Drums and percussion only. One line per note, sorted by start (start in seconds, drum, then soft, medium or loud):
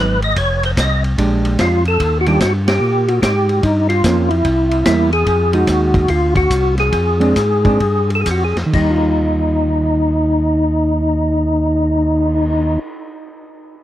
0.22 ride soft
0.36 kick soft
0.36 ride medium
0.63 ride soft
0.77 kick soft
0.77 snare medium
0.77 hi-hat pedal medium
0.77 ride medium
1.04 ride soft
1.18 kick soft
1.18 ride medium
1.45 ride soft
1.59 kick soft
1.59 snare medium
1.59 hi-hat pedal soft
1.59 ride medium
1.85 ride soft
2.00 kick soft
2.00 ride medium
2.26 ride soft
2.40 kick soft
2.40 snare medium
2.40 hi-hat pedal medium
2.40 ride medium
2.68 snare medium
2.68 ride medium
3.08 ride soft
3.22 kick soft
3.22 snare medium
3.22 hi-hat pedal medium
3.22 ride medium
3.49 ride soft
3.63 kick soft
3.63 ride medium
3.90 ride soft
4.04 kick soft
4.04 snare medium
4.04 hi-hat pedal medium
4.04 ride medium
4.30 ride soft
4.45 kick soft
4.45 ride medium
4.71 ride soft
4.85 kick soft
4.85 snare medium
4.85 hi-hat pedal medium
4.85 ride medium
5.12 ride soft
5.26 kick soft
5.26 ride medium
5.53 ride soft
5.67 kick soft
5.67 snare soft
5.67 hi-hat pedal soft
5.67 ride medium
5.94 kick medium
5.94 ride soft
6.08 kick soft
6.08 ride medium
6.35 kick soft
6.35 ride soft
6.50 kick soft
6.50 hi-hat pedal medium
6.50 ride medium
6.78 snare soft
6.78 ride soft
6.92 kick soft
6.92 ride medium
7.21 ride soft
7.36 kick soft
7.36 snare soft
7.36 hi-hat pedal soft
7.36 ride medium
7.65 kick soft
7.65 ride soft
7.80 kick soft
7.80 ride soft
8.10 ride soft
8.26 kick soft
8.26 hi-hat pedal soft
8.26 ride medium
8.57 snare soft
8.57 ride soft
8.73 kick soft
8.73 crash medium
9.05 cymbal swell soft